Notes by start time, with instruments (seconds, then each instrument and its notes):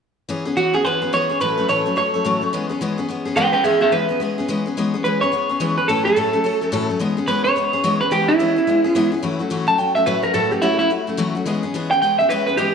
0.29 steel-string acoustic guitar E3 B3 C#4 G#4
0.45 steel-string acoustic guitar B3 C#4 G#4
0.57 steel-string acoustic guitar E3 B3 C#4 G#4, clean electric guitar F#4
0.74 steel-string acoustic guitar B3 C#4 G#4, clean electric guitar G#4
0.85 steel-string acoustic guitar E3 B3 C#4 G#4, clean electric guitar B4
1.02 steel-string acoustic guitar B3 C#4 G#4
1.13 steel-string acoustic guitar E3 B3 C#4 G#4, clean electric guitar C#5
1.29 steel-string acoustic guitar B3 C#4 G#4
1.40 steel-string acoustic guitar A2 E3 F#3 A3 C#4 A4, clean electric guitar B4
1.57 steel-string acoustic guitar F#3 A3 C#4 A4
1.68 steel-string acoustic guitar A2 E3 F#3 A3 C#4 A4, clean electric guitar C#5
1.86 steel-string acoustic guitar F#3 A3 C#4 A4
1.96 steel-string acoustic guitar F#3 A3 C#4 A4, clean electric guitar C#5
2.14 steel-string acoustic guitar F#3 A3 C#4 A4
2.25 steel-string acoustic guitar A2 E3 F#3 A3 C#4 A4
2.41 steel-string acoustic guitar F#3 A3 C#4 A4
2.53 steel-string acoustic guitar E3 G#3 B3 C#4 G#4
2.69 steel-string acoustic guitar B3 C#4 G#4
2.81 steel-string acoustic guitar E3 G#3 B3 C#4 G#4
2.98 steel-string acoustic guitar B3 C#4 G#4
3.09 steel-string acoustic guitar G#3 B3 C#4 G#4
3.25 steel-string acoustic guitar B3 C#4 G#4
3.36 steel-string acoustic guitar E3 G#3 B3 C#4 G#4, clean electric guitar B4 G5
3.53 steel-string acoustic guitar B3 C#4 G#4, clean electric guitar B4 G5
3.64 steel-string acoustic guitar E3 G#3 B3 C#4 G#4, clean electric guitar G#4 E5
3.81 steel-string acoustic guitar B3 C#4 G#4, clean electric guitar G#4 E5
3.92 steel-string acoustic guitar E3 G#3 B3 C#4 G#4, clean electric guitar B4
4.09 steel-string acoustic guitar B3 C#4 G#4
4.20 steel-string acoustic guitar G#3 B3 C#4 G#4
4.38 steel-string acoustic guitar B3 C#4 G#4
4.48 steel-string acoustic guitar E3 G#3 B3 C#4 G#4
4.66 steel-string acoustic guitar B3 C#4 G#4
4.77 steel-string acoustic guitar E3 G#3 B3 C#4 G#4
4.94 steel-string acoustic guitar B3 C#4 G#4
5.04 steel-string acoustic guitar E3 G#3 B3 C#4 G#4, clean electric guitar B4
5.21 steel-string acoustic guitar B3 C#4 G#4, clean electric guitar C#5
5.32 steel-string acoustic guitar G#3 B3 C#4 G#4
5.49 steel-string acoustic guitar B3 C#4 G#4
5.60 steel-string acoustic guitar E3 G#3 B3 C#4 G#4
5.77 steel-string acoustic guitar B3 C#4 G#4, clean electric guitar B4
5.88 steel-string acoustic guitar A2 E3 F#3 A3 C#4 A4, clean electric guitar A4
6.05 steel-string acoustic guitar F#3 A3 C#4 A4, clean electric guitar A4
6.16 steel-string acoustic guitar A2 E3 F#3 A3 C#4 A4
6.33 steel-string acoustic guitar F#3 A3 C#4 A4
6.44 steel-string acoustic guitar F#3 A3 C#4 A4
6.61 steel-string acoustic guitar F#3 A3 C#4 A4
6.72 steel-string acoustic guitar A2 E3 F#3 A3 C#4 A4
6.89 steel-string acoustic guitar F#3 A3 C#4 A4
6.99 steel-string acoustic guitar E3 G#3 B3 C#4 G#4
7.17 steel-string acoustic guitar B3 C#4 G#4
7.27 steel-string acoustic guitar E3 G#3 B3 C#4 G#4, clean electric guitar B4
7.44 steel-string acoustic guitar B3 C#4 G#4, clean electric guitar C#5
7.56 steel-string acoustic guitar G#3 B3 C#4 G#4
7.73 steel-string acoustic guitar B3 C#4 G#4
7.84 steel-string acoustic guitar E3 G#3 B3 C#4 G#4
8.01 steel-string acoustic guitar C#4 G#4, clean electric guitar B4
8.11 steel-string acoustic guitar E3 G#3 B3 C#4 G#4, clean electric guitar G4
8.28 steel-string acoustic guitar C#4 G#4, clean electric guitar E4
8.39 steel-string acoustic guitar E3 G#3 B3 C#4 G#4
8.56 steel-string acoustic guitar B3 C#4 G#4
8.67 steel-string acoustic guitar G#3 B3 C#4 G#4
8.84 steel-string acoustic guitar B3 C#4 G#4
8.95 steel-string acoustic guitar E3 G#3 B3 C#4 G#4
9.12 steel-string acoustic guitar B3 C#4 G#4
9.23 steel-string acoustic guitar A2 E3 F#3 A3 C#4 F#4
9.39 steel-string acoustic guitar F#3 A3 C#4 F#4
9.50 steel-string acoustic guitar A2 E3 F#3 A3 C#4 F#4
9.67 steel-string acoustic guitar F#3 A3 C#4 F#4, clean electric guitar A5
9.78 steel-string acoustic guitar F#3 A3 C#4 F#4, clean electric guitar G5
9.95 steel-string acoustic guitar F#3 A3 C#4 F#4, clean electric guitar E5
10.06 steel-string acoustic guitar A2 E3 F#3 A3 C#4 F#4, clean electric guitar B4
10.23 steel-string acoustic guitar F#3 A3 C#4 F#4, clean electric guitar A#4
10.34 steel-string acoustic guitar A2 E3 F#3 A3 C#4 F#4, clean electric guitar A4
10.51 steel-string acoustic guitar F#3 A3 C#4 F#4, clean electric guitar G4
10.62 steel-string acoustic guitar A2 E3 F#3 A3 C#4 F#4, clean electric guitar E4
10.79 steel-string acoustic guitar F#3 A3 C#4 F#4, clean electric guitar E4
10.90 steel-string acoustic guitar F#3 A3 C#4 F#4
11.07 steel-string acoustic guitar F#3 A3 C#4 F#4
11.17 steel-string acoustic guitar A2 E3 F#3 A3 C#4 F#4
11.35 steel-string acoustic guitar F#3 A3 C#4 F#4
11.46 steel-string acoustic guitar E3 G#3 B3 C#4 G#4
11.63 steel-string acoustic guitar B3 C#4 G#4
11.74 steel-string acoustic guitar E3 G#3 B3 C#4 G#4
11.91 steel-string acoustic guitar B3 C#4 G#4, clean electric guitar G5
12.02 steel-string acoustic guitar G#3 B3 C#4 G#4, clean electric guitar G5
12.19 steel-string acoustic guitar B3 C#4 G#4, clean electric guitar E5
12.29 steel-string acoustic guitar E3 G#3 B3 C#4 G#4, clean electric guitar B4
12.47 steel-string acoustic guitar B3 C#4 G#4, clean electric guitar B4
12.57 steel-string acoustic guitar E3 G#3 B3 C#4 G#4, clean electric guitar G4